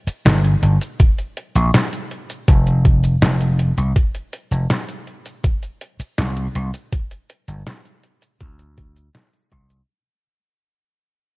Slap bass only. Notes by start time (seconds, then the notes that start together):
0.07 muted slap bass stroke
0.25 G1
0.62 G1
1.55 A#1
2.48 F1
3.22 F1
3.77 C2
4.51 F1
6.00 muted slap bass stroke
6.18 C2
6.55 C2
7.48 G1
8.41 D2
9.52 C2